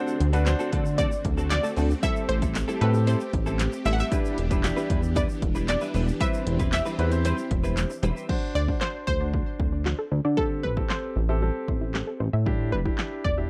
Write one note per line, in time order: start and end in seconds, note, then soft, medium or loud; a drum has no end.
0.00 2.01 D3 medium
0.00 0.18 A3 medium
0.00 4.08 A3 medium
0.00 0.18 C4 medium
0.00 4.08 C4 medium
0.00 0.25 D4 medium
0.00 0.19 F#4 loud
0.00 0.25 F#4 medium
0.00 2.01 F#4 medium
0.00 0.19 A4 loud
0.00 0.25 C5 medium
0.00 1.03 F#5 loud
0.08 shaker medium
0.20 0.55 D2 medium
0.20 muted clean electric guitar stroke soft
0.20 closed hi-hat medium
0.33 0.45 A3 medium
0.33 0.45 C4 medium
0.33 0.43 D4 medium
0.33 0.43 F#4 medium
0.33 0.44 F#4 medium
0.33 0.44 A4 medium
0.33 0.44 B4 loud
0.33 closed hi-hat medium
0.33 shaker medium
0.46 1.28 D4 medium
0.46 1.28 F#4 medium
0.46 1.28 C5 loud
0.46 muted clean electric guitar stroke soft
0.46 snare medium
0.46 clap loud
0.46 closed hi-hat medium
0.46 shaker medium
0.59 0.71 A3 medium
0.59 0.71 C4 medium
0.59 0.72 F#4 medium
0.59 0.72 A4 medium
0.59 shaker medium
0.72 1.07 D3 medium
0.72 0.83 A3 medium
0.72 0.84 C4 medium
0.72 0.84 F#4 medium
0.72 0.84 A4 medium
0.72 kick medium
0.72 closed hi-hat medium
0.85 muted clean electric guitar stroke medium
0.85 shaker soft
0.98 1.12 A3 medium
0.98 1.11 C4 medium
0.98 1.11 F#4 medium
0.98 1.10 A4 medium
0.98 1.47 D5 medium
0.98 kick medium
0.98 closed hi-hat medium
0.98 shaker medium
1.11 muted clean electric guitar stroke medium
1.11 shaker medium
1.24 1.59 D2 loud
1.24 muted clean electric guitar stroke soft
1.24 kick medium
1.24 closed hi-hat medium
1.37 1.49 A3 soft
1.37 1.49 C4 medium
1.37 1.49 F#4 medium
1.37 1.49 A4 medium
1.37 shaker medium
1.50 2.04 D5 loud
1.50 muted clean electric guitar stroke soft
1.50 snare medium
1.50 clap loud
1.50 closed hi-hat loud
1.50 shaker medium
1.63 1.75 A3 medium
1.63 1.75 C4 medium
1.63 1.75 F#4 medium
1.63 1.75 A4 medium
1.63 shaker medium
1.76 1.94 D2 loud
1.76 1.91 A3 medium
1.76 1.89 C4 medium
1.76 1.89 F#4 medium
1.76 1.89 A4 loud
1.76 open hi-hat medium
1.76 shaker soft
1.90 muted clean electric guitar stroke soft
1.90 shaker soft
2.02 2.27 G3 medium
2.02 2.64 C4 medium
2.02 2.27 C4 loud
2.02 2.27 E4 medium
2.02 2.64 G4 medium
2.02 6.16 G4 medium
2.02 2.64 A4 medium
2.02 2.27 A4 loud
2.02 2.30 E5 loud
2.02 kick loud
2.02 closed hi-hat medium
2.02 shaker medium
2.16 shaker soft
2.29 2.63 A1 medium
2.29 2.83 C5 medium
2.29 closed hi-hat medium
2.42 2.53 G3 medium
2.42 2.53 C4 medium
2.42 2.53 E4 medium
2.42 2.53 A4 medium
2.42 kick medium
2.42 closed hi-hat medium
2.42 shaker soft
2.55 muted clean electric guitar stroke soft
2.55 snare loud
2.55 clap loud
2.55 closed hi-hat medium
2.55 shaker medium
2.68 2.80 G3 medium
2.68 2.80 C4 medium
2.68 2.81 E4 medium
2.68 2.81 A4 medium
2.68 shaker medium
2.81 3.16 A2 medium
2.81 2.92 G3 medium
2.81 2.91 C4 medium
2.81 2.92 C4 medium
2.81 2.93 E4 medium
2.81 2.91 G4 medium
2.81 2.92 A4 medium
2.81 2.93 A4 medium
2.81 2.93 B4 medium
2.81 closed hi-hat medium
2.94 3.75 C4 medium
2.94 3.76 G4 medium
2.94 3.76 A4 medium
2.94 muted clean electric guitar stroke soft
2.94 shaker soft
3.07 3.21 G3 medium
3.07 3.20 C4 medium
3.07 3.19 E4 medium
3.07 3.19 A4 loud
3.07 3.56 C5 medium
3.07 closed hi-hat medium
3.07 shaker medium
3.20 muted clean electric guitar stroke medium
3.20 shaker medium
3.33 3.68 A1 loud
3.33 muted clean electric guitar stroke soft
3.33 kick medium
3.33 closed hi-hat medium
3.46 3.58 G3 medium
3.46 3.58 C4 medium
3.46 3.57 E4 medium
3.46 3.57 A4 medium
3.46 shaker soft
3.59 muted clean electric guitar stroke soft
3.59 snare medium
3.59 clap loud
3.59 closed hi-hat loud
3.59 shaker medium
3.72 muted clean electric guitar stroke soft
3.72 shaker medium
3.85 4.03 A1 loud
3.85 3.98 G3 medium
3.85 3.98 C4 medium
3.85 3.98 E4 loud
3.85 3.97 A4 medium
3.85 3.92 E5 loud
3.85 open hi-hat medium
3.85 shaker soft
3.93 4.00 F#5 loud
3.98 4.10 G3 medium
3.98 4.10 C4 medium
3.98 4.10 E4 medium
3.98 4.10 A4 medium
3.98 4.86 E5 loud
3.98 shaker soft
4.11 8.25 E3 medium
4.11 4.36 G3 medium
4.11 6.18 B3 medium
4.11 4.42 D4 medium
4.11 8.25 D4 medium
4.11 4.36 D4 medium
4.11 4.42 E4 medium
4.11 4.36 E4 loud
4.11 4.42 G4 medium
4.11 4.36 B4 loud
4.11 kick loud
4.11 closed hi-hat medium
4.11 shaker medium
4.25 shaker soft
4.38 4.72 E1 medium
4.38 muted clean electric guitar stroke soft
4.38 closed hi-hat medium
4.50 4.62 G3 medium
4.50 4.61 D4 medium
4.50 4.62 D4 medium
4.50 4.61 E4 medium
4.50 4.62 E4 medium
4.50 4.61 G4 medium
4.50 4.62 B4 medium
4.50 kick medium
4.50 closed hi-hat medium
4.50 shaker medium
4.64 5.45 D4 medium
4.64 5.45 E4 medium
4.64 5.45 G4 medium
4.64 snare medium
4.64 clap loud
4.64 closed hi-hat medium
4.64 shaker medium
4.76 4.89 G3 medium
4.76 4.89 D4 medium
4.76 4.89 E4 medium
4.76 4.90 B4 medium
4.76 shaker medium
4.90 5.24 E2 medium
4.90 5.01 G3 medium
4.90 5.01 D4 medium
4.90 5.01 E4 medium
4.90 5.01 B4 medium
4.90 kick medium
4.90 closed hi-hat medium
5.03 muted clean electric guitar stroke soft
5.03 shaker soft
5.16 5.30 G3 medium
5.16 5.28 D4 medium
5.16 5.28 E4 medium
5.16 5.28 B4 loud
5.16 5.68 D5 loud
5.16 kick loud
5.16 closed hi-hat medium
5.16 shaker medium
5.29 muted clean electric guitar stroke medium
5.29 shaker medium
5.42 5.77 E1 loud
5.42 muted clean electric guitar stroke soft
5.42 kick medium
5.42 closed hi-hat medium
5.55 5.67 G3 medium
5.55 5.66 D4 medium
5.55 5.66 E4 medium
5.55 5.66 B4 medium
5.55 shaker medium
5.68 6.22 D5 loud
5.68 muted clean electric guitar stroke soft
5.68 snare medium
5.68 clap loud
5.68 closed hi-hat loud
5.68 shaker medium
5.81 5.93 G3 medium
5.81 5.93 D4 medium
5.81 5.92 E4 medium
5.81 5.92 B4 medium
5.81 shaker medium
5.94 6.12 E1 loud
5.94 6.08 G3 medium
5.94 6.07 D4 medium
5.94 6.07 E4 loud
5.94 6.06 B4 loud
5.94 open hi-hat medium
5.94 shaker soft
6.07 muted clean electric guitar stroke soft
6.07 shaker medium
6.20 6.44 G3 medium
6.20 6.82 C4 medium
6.20 8.27 C4 medium
6.20 6.44 C4 medium
6.20 6.82 E4 medium
6.20 6.45 E4 medium
6.20 8.27 G4 medium
6.20 6.82 B4 medium
6.20 6.45 B4 medium
6.20 6.72 E5 loud
6.20 kick loud
6.20 closed hi-hat medium
6.20 shaker medium
6.34 shaker soft
6.46 6.81 E1 medium
6.46 muted clean electric guitar stroke soft
6.46 closed hi-hat medium
6.59 6.71 G3 soft
6.59 6.71 C4 medium
6.59 6.71 E4 medium
6.59 6.70 B4 medium
6.59 kick medium
6.59 closed hi-hat medium
6.59 shaker medium
6.72 7.27 E5 loud
6.72 muted clean electric guitar stroke soft
6.72 snare medium
6.72 clap loud
6.72 closed hi-hat loud
6.72 shaker medium
6.85 6.97 G3 medium
6.85 6.98 C4 medium
6.85 6.98 E4 medium
6.85 6.98 B4 medium
6.85 shaker medium
6.99 7.33 E2 medium
6.99 7.10 G3 medium
6.99 7.09 C4 medium
6.99 7.10 C4 medium
6.99 7.09 E4 medium
6.99 7.10 E4 medium
6.99 7.09 B4 medium
6.99 7.10 B4 medium
6.99 closed hi-hat medium
7.12 7.93 C4 medium
7.12 7.93 E4 medium
7.12 7.93 C5 medium
7.12 muted clean electric guitar stroke medium
7.12 closed hi-hat medium
7.12 shaker soft
7.25 7.39 G3 medium
7.25 7.37 C4 medium
7.25 7.37 E4 medium
7.25 7.37 B4 medium
7.25 7.99 C5 medium
7.25 closed hi-hat medium
7.25 shaker medium
7.38 muted clean electric guitar stroke soft
7.38 shaker medium
7.51 7.85 E1 loud
7.51 muted clean electric guitar stroke soft
7.51 kick medium
7.51 closed hi-hat medium
7.64 7.75 G3 medium
7.64 7.75 C4 medium
7.64 7.75 E4 medium
7.64 7.75 B4 medium
7.64 shaker soft
7.77 muted clean electric guitar stroke soft
7.77 snare medium
7.77 clap loud
7.77 closed hi-hat loud
7.77 shaker medium
7.90 muted clean electric guitar stroke soft
7.90 shaker medium
8.03 8.12 E1 loud
8.03 8.16 G3 medium
8.03 8.15 C4 medium
8.03 8.15 E4 loud
8.03 8.15 B4 medium
8.03 closed hi-hat medium
8.03 shaker medium
8.16 8.28 G3 medium
8.16 8.27 C4 medium
8.16 8.27 E4 medium
8.16 8.27 B4 medium
8.16 shaker soft
8.29 8.37 F#3 medium
8.29 8.60 D4 medium
8.29 8.60 F#4 medium
8.29 8.60 C5 loud
8.29 kick loud
8.29 crash medium
8.55 8.72 D2 medium
8.55 8.82 D5 loud
8.68 9.09 D4 medium
8.68 8.76 D4 medium
8.68 9.09 F#4 medium
8.68 9.09 C5 medium
8.68 kick medium
8.81 8.89 F#4 medium
8.81 9.05 C5 loud
8.81 snare medium
8.81 clap loud
9.07 9.42 D2 medium
9.07 10.42 C5 loud
9.07 kick medium
9.20 10.02 D4 medium
9.20 10.02 F#4 medium
9.20 10.02 C5 medium
9.20 9.28 D5 medium
9.34 9.41 F#3 medium
9.34 kick medium
9.59 9.94 D2 medium
9.59 9.67 C4 medium
9.59 kick medium
9.73 9.80 D4 medium
9.86 9.93 F#4 loud
9.86 snare medium
9.86 clap loud
9.99 10.06 A4 medium
10.12 10.20 D2 medium
10.12 10.19 C5 medium
10.25 10.66 D3 medium
10.25 10.32 D5 loud
10.37 10.45 G3 medium
10.37 10.68 C4 medium
10.37 10.68 G4 medium
10.37 10.64 A4 medium
10.37 10.68 A4 medium
10.37 kick loud
10.63 10.81 A1 medium
10.63 10.75 B4 medium
10.77 11.17 C4 medium
10.77 10.84 E4 medium
10.77 11.18 G4 medium
10.77 11.18 A4 medium
10.77 kick medium
10.90 10.97 G4 medium
10.90 11.64 C5 medium
10.90 snare medium
10.90 clap loud
11.16 11.50 A1 medium
11.29 11.39 C4 medium
11.29 11.39 G4 medium
11.29 11.39 A4 medium
11.29 11.36 E5 medium
11.42 11.49 G3 medium
11.42 12.23 C4 medium
11.42 12.24 G4 medium
11.42 12.24 A4 medium
11.68 12.03 A1 medium
11.68 11.75 C4 medium
11.68 kick medium
11.81 11.89 E4 medium
11.94 12.01 G4 loud
11.94 snare medium
11.94 clap loud
12.07 12.15 A4 medium
12.20 12.29 A1 medium
12.20 12.28 C5 medium
12.33 12.74 A2 medium
12.33 12.41 E5 loud
12.46 12.54 G3 medium
12.46 12.77 D4 medium
12.46 12.77 E4 medium
12.46 12.77 G4 medium
12.46 kick loud
12.72 12.90 E1 medium
12.72 13.26 B4 medium
12.85 13.26 D4 medium
12.85 12.93 E4 loud
12.85 13.26 E4 medium
12.85 13.26 G4 medium
12.85 kick medium
12.98 13.06 G4 medium
12.98 snare medium
12.98 clap loud
13.24 13.50 E1 medium
13.24 13.50 D5 loud
13.24 kick medium
13.37 13.50 D4 medium
13.37 13.50 E4 medium
13.37 13.50 G4 medium
13.37 13.45 E5 medium